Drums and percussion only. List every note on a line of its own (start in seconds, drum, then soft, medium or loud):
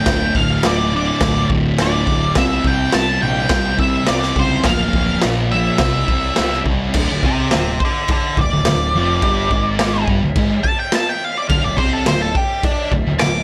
0.06 kick loud
0.06 snare loud
0.06 crash medium
0.35 kick medium
0.63 snare loud
0.63 crash medium
1.21 kick loud
1.21 snare loud
1.21 crash medium
1.50 kick medium
1.78 snare loud
1.78 crash medium
2.07 kick medium
2.35 kick loud
2.35 snare loud
2.35 crash medium
2.64 kick medium
2.93 snare loud
2.93 crash medium
3.49 kick loud
3.49 snare loud
3.49 crash medium
3.79 kick medium
4.07 snare loud
4.07 crash medium
4.36 kick medium
4.64 kick loud
4.64 snare loud
4.64 crash medium
4.93 kick medium
5.22 snare loud
5.22 crash medium
5.78 kick loud
5.78 snare loud
5.78 crash medium
6.08 kick medium
6.36 snare loud
6.36 crash medium
6.66 kick medium
6.94 kick loud
6.94 crash loud
6.94 crash medium
7.23 kick medium
7.51 snare loud
7.51 crash medium
7.80 kick loud
8.08 kick loud
8.08 crash medium
8.37 kick medium
8.65 snare loud
8.65 crash medium
9.22 kick loud
9.22 crash medium
9.51 kick medium
9.79 snare loud
9.79 crash medium
10.08 kick medium
10.36 kick loud
10.36 crash medium
10.64 kick medium
10.92 snare loud
10.92 crash medium
11.49 kick loud
11.49 crash medium
11.78 kick loud
12.06 snare loud
12.06 crash medium
12.35 kick medium
12.63 kick loud
12.63 crash medium
12.92 kick medium
13.19 snare loud
13.19 crash medium